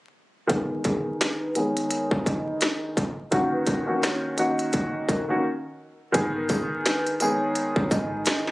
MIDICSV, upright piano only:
0, 0, Header, 1, 2, 480
1, 0, Start_track
1, 0, Tempo, 705882
1, 339, Time_signature, 4, 2, 24, 8
1, 5789, End_track
2, 0, Start_track
2, 0, Title_t, "Upright piano"
2, 0, Program_c, 0, 0
2, 323, Note_on_c, 0, 51, 90
2, 327, Note_on_c, 0, 56, 76
2, 331, Note_on_c, 0, 59, 77
2, 335, Note_on_c, 0, 68, 99
2, 1002, Note_off_c, 0, 51, 0
2, 1004, Note_off_c, 0, 56, 0
2, 1006, Note_off_c, 0, 59, 0
2, 1008, Note_off_c, 0, 68, 0
2, 1058, Note_on_c, 0, 51, 84
2, 1063, Note_on_c, 0, 56, 80
2, 1066, Note_on_c, 0, 59, 78
2, 1071, Note_on_c, 0, 68, 99
2, 2057, Note_off_c, 0, 51, 0
2, 2060, Note_off_c, 0, 56, 0
2, 2061, Note_off_c, 0, 59, 0
2, 2064, Note_off_c, 0, 68, 0
2, 2253, Note_on_c, 0, 51, 95
2, 2257, Note_on_c, 0, 58, 81
2, 2261, Note_on_c, 0, 61, 81
2, 2265, Note_on_c, 0, 66, 108
2, 2601, Note_off_c, 0, 51, 0
2, 2603, Note_off_c, 0, 58, 0
2, 2605, Note_off_c, 0, 61, 0
2, 2607, Note_off_c, 0, 66, 0
2, 2625, Note_on_c, 0, 51, 87
2, 2630, Note_on_c, 0, 58, 76
2, 2634, Note_on_c, 0, 61, 81
2, 2637, Note_on_c, 0, 66, 93
2, 2949, Note_off_c, 0, 51, 0
2, 2951, Note_off_c, 0, 58, 0
2, 2953, Note_off_c, 0, 61, 0
2, 2955, Note_off_c, 0, 66, 0
2, 2973, Note_on_c, 0, 51, 82
2, 2977, Note_on_c, 0, 58, 81
2, 2981, Note_on_c, 0, 61, 71
2, 2985, Note_on_c, 0, 66, 107
2, 3539, Note_off_c, 0, 51, 0
2, 3541, Note_off_c, 0, 58, 0
2, 3543, Note_off_c, 0, 61, 0
2, 3545, Note_off_c, 0, 66, 0
2, 3593, Note_on_c, 0, 51, 83
2, 3598, Note_on_c, 0, 58, 80
2, 3602, Note_on_c, 0, 61, 84
2, 3606, Note_on_c, 0, 66, 95
2, 3698, Note_off_c, 0, 51, 0
2, 3700, Note_off_c, 0, 58, 0
2, 3702, Note_off_c, 0, 61, 0
2, 3704, Note_off_c, 0, 66, 0
2, 4163, Note_on_c, 0, 51, 100
2, 4168, Note_on_c, 0, 56, 78
2, 4171, Note_on_c, 0, 59, 83
2, 4176, Note_on_c, 0, 68, 108
2, 4842, Note_off_c, 0, 51, 0
2, 4845, Note_off_c, 0, 56, 0
2, 4846, Note_off_c, 0, 59, 0
2, 4849, Note_off_c, 0, 68, 0
2, 4899, Note_on_c, 0, 51, 86
2, 4902, Note_on_c, 0, 56, 83
2, 4907, Note_on_c, 0, 59, 80
2, 4911, Note_on_c, 0, 68, 103
2, 5789, Note_off_c, 0, 51, 0
2, 5789, Note_off_c, 0, 56, 0
2, 5789, Note_off_c, 0, 59, 0
2, 5789, Note_off_c, 0, 68, 0
2, 5789, End_track
0, 0, End_of_file